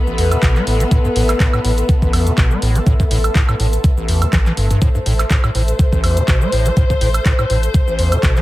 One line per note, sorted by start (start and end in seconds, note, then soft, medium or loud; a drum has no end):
0.00 4.83 B3 medium
0.00 8.42 A4 medium
0.00 8.42 E5 medium
0.00 8.42 C6 medium
0.07 0.33 A1 medium
0.07 cabasa soft
0.18 0.37 E2 medium
0.18 open hi-hat loud
0.32 0.38 E3 medium
0.32 closed hi-hat medium
0.32 cabasa medium
0.32 high woodblock medium
0.43 0.61 A1 medium
0.43 0.57 B2 medium
0.43 kick loud
0.43 clap loud
0.43 closed hi-hat medium
0.43 cabasa medium
0.56 0.65 A3 medium
0.56 clap soft
0.56 cabasa soft
0.67 0.85 A1 medium
0.67 0.82 A2 medium
0.67 open hi-hat loud
0.80 0.84 A3 loud
0.80 closed hi-hat medium
0.80 cabasa medium
0.91 0.99 A2 loud
0.91 kick loud
0.91 closed hi-hat medium
0.91 cabasa medium
1.05 1.08 G2 loud
1.05 cabasa soft
1.16 1.34 A1 loud
1.16 1.23 A2 medium
1.16 open hi-hat loud
1.29 clap soft
1.29 closed hi-hat medium
1.29 cabasa medium
1.29 high woodblock medium
1.40 1.48 A2 medium
1.40 kick loud
1.40 clap loud
1.40 closed hi-hat medium
1.40 cabasa medium
1.53 1.60 A2 loud
1.53 cabasa soft
1.53 high woodblock medium
1.64 1.83 A1 medium
1.64 1.72 A2 medium
1.64 open hi-hat loud
1.78 closed hi-hat medium
1.78 cabasa medium
1.89 kick loud
1.89 closed hi-hat medium
1.89 cabasa medium
2.02 2.28 A1 medium
2.02 kick medium
2.02 cabasa soft
2.13 2.32 E2 medium
2.13 open hi-hat loud
2.13 high woodblock medium
2.27 2.33 E3 medium
2.27 closed hi-hat medium
2.27 cabasa medium
2.38 2.56 A1 medium
2.38 2.53 B2 medium
2.38 kick loud
2.38 clap loud
2.38 closed hi-hat medium
2.38 cabasa medium
2.51 2.60 A3 medium
2.51 cabasa soft
2.62 2.80 A1 medium
2.62 2.77 A2 medium
2.62 open hi-hat loud
2.75 2.79 A3 loud
2.75 closed hi-hat medium
2.75 cabasa medium
2.86 2.94 A2 loud
2.86 kick loud
2.86 closed hi-hat soft
2.86 cabasa medium
3.00 3.03 G2 loud
3.00 kick medium
3.00 cabasa soft
3.11 3.29 A1 loud
3.11 3.18 A2 medium
3.11 open hi-hat loud
3.24 closed hi-hat medium
3.24 cabasa medium
3.24 high woodblock medium
3.35 3.43 A2 medium
3.35 kick loud
3.35 clap loud
3.35 closed hi-hat medium
3.35 cabasa medium
3.49 3.55 A2 loud
3.49 cabasa soft
3.49 high woodblock medium
3.60 3.78 A1 medium
3.60 3.67 A2 medium
3.60 open hi-hat loud
3.73 closed hi-hat medium
3.73 cabasa medium
3.84 kick loud
3.84 closed hi-hat medium
3.84 cabasa medium
3.97 4.23 A1 medium
3.97 cabasa soft
4.08 4.27 E2 medium
4.08 open hi-hat loud
4.22 4.25 C4 medium
4.22 closed hi-hat medium
4.22 cabasa medium
4.22 high woodblock medium
4.33 4.51 A1 medium
4.33 4.37 E3 loud
4.33 kick loud
4.33 clap loud
4.33 closed hi-hat medium
4.33 cabasa medium
4.46 4.52 E3 medium
4.46 clap soft
4.46 cabasa soft
4.57 4.76 G1 medium
4.57 4.68 G2 medium
4.57 open hi-hat loud
4.71 4.80 G2 loud
4.71 closed hi-hat medium
4.71 cabasa medium
4.82 4.89 A2 loud
4.82 8.42 C5 medium
4.82 kick loud
4.82 closed hi-hat medium
4.82 cabasa medium
4.95 4.99 G2 loud
4.95 cabasa soft
5.06 5.24 A1 loud
5.06 5.13 A2 medium
5.06 open hi-hat loud
5.19 clap soft
5.19 closed hi-hat medium
5.19 cabasa medium
5.19 high woodblock medium
5.30 5.38 A2 medium
5.30 kick loud
5.30 clap loud
5.30 closed hi-hat medium
5.30 cabasa medium
5.44 5.50 A2 loud
5.44 cabasa soft
5.44 high woodblock medium
5.55 5.73 A1 medium
5.55 5.62 A2 medium
5.55 open hi-hat loud
5.68 closed hi-hat medium
5.68 cabasa medium
5.79 kick loud
5.79 closed hi-hat medium
5.79 cabasa medium
5.92 6.18 A1 medium
5.92 kick medium
5.92 cabasa soft
6.04 6.22 E2 medium
6.04 open hi-hat loud
6.04 high woodblock medium
6.17 6.23 E3 medium
6.17 closed hi-hat medium
6.17 cabasa medium
6.28 6.46 A1 medium
6.28 6.43 B2 medium
6.28 kick loud
6.28 clap loud
6.28 closed hi-hat medium
6.28 cabasa medium
6.41 6.50 A3 medium
6.41 cabasa soft
6.52 6.71 A1 medium
6.52 6.67 A2 medium
6.52 open hi-hat loud
6.66 6.69 A3 loud
6.66 closed hi-hat medium
6.66 cabasa medium
6.77 6.84 A2 loud
6.77 kick loud
6.77 closed hi-hat medium
6.77 cabasa medium
6.90 6.94 G2 loud
6.90 kick medium
6.90 cabasa soft
7.01 7.20 A1 loud
7.01 7.09 A2 medium
7.01 open hi-hat loud
7.14 closed hi-hat medium
7.14 cabasa medium
7.14 high woodblock medium
7.25 7.33 A2 medium
7.25 kick loud
7.25 clap loud
7.25 closed hi-hat medium
7.25 cabasa medium
7.39 7.45 A2 loud
7.39 cabasa soft
7.39 high woodblock medium
7.50 7.68 A1 medium
7.50 7.57 A2 medium
7.50 open hi-hat loud
7.63 closed hi-hat medium
7.63 cabasa medium
7.74 kick loud
7.74 closed hi-hat medium
7.74 cabasa medium
7.88 8.14 A1 medium
7.88 cabasa soft
7.99 8.17 E2 medium
7.99 open hi-hat loud
8.12 8.18 E3 medium
8.12 closed hi-hat medium
8.12 cabasa medium
8.12 high woodblock medium
8.23 8.41 A1 medium
8.23 8.38 B2 medium
8.23 kick loud
8.23 clap loud
8.23 closed hi-hat medium
8.23 cabasa medium
8.36 8.42 A3 medium
8.36 clap soft
8.36 cabasa soft